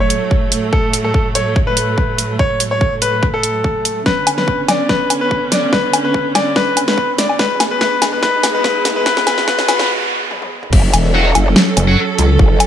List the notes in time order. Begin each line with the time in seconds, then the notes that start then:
Already playing: A2 F#3 A3
0.00 C#5
0.10 closed hi-hat
0.31 kick
0.52 closed hi-hat
0.73 A4, kick
0.93 closed hi-hat
1.04 A4
1.14 kick
1.35 C#5, closed hi-hat
1.56 kick
1.67 B4
1.77 closed hi-hat
1.98 kick
2.18 closed hi-hat
2.39 C#5, kick
2.60 closed hi-hat
2.71 C#5
2.81 kick
3.02 B4, closed hi-hat
3.23 kick
3.34 A4
3.43 closed hi-hat
3.64 kick
3.85 closed hi-hat
4.06 D3 B3 C#4 B4, kick, snare, riser
4.27 closed hi-hat, low woodblock
4.38 B4, snare
4.48 kick
4.68 D5, snare, closed hi-hat, low woodblock
4.89 B4, kick, snare
5.10 closed hi-hat, low woodblock
5.21 B4
5.31 kick
5.52 D5, snare, closed hi-hat
5.73 B4, kick, snare
5.93 closed hi-hat, low woodblock
6.04 B4
6.14 kick
6.35 D5, snare, closed hi-hat, low woodblock
6.56 B4, kick, snare
6.77 closed hi-hat, low woodblock
6.88 B4, snare
6.98 kick
7.18 D5, snare, closed hi-hat
7.29 low woodblock
7.39 E2 B2 G#3 B4, kick, snare
7.60 snare, closed hi-hat, low woodblock
7.71 B4
7.81 B4, kick, snare
8.02 snare, closed hi-hat, low woodblock
8.13 B4
8.23 B4, kick, snare
8.43 snare, closed hi-hat, low woodblock
8.55 B4
8.64 B4, kick, snare
8.85 snare, closed hi-hat
8.96 B4
9.06 B4, kick, snare, noise sweep
9.17 snare
9.27 B4, snare, closed hi-hat, low woodblock
9.38 snare
9.48 B4, kick, snare
9.59 snare
9.68 B4, snare, closed hi-hat, low woodblock
9.79 snare
10.31 high tom
10.42 high tom
10.63 mid tom
10.73 F#1 F#3 C#4 A4, kick, crash
10.94 E1, closed hi-hat, low woodblock
11.14 F#4 C#5 F#5
11.35 F#1, closed hi-hat, low woodblock
11.56 snare
11.77 F#1, closed hi-hat, low woodblock
11.88 F#4 C#5 F#5
12.19 C#2, closed hi-hat
12.39 F#1, kick
12.60 closed hi-hat, low woodblock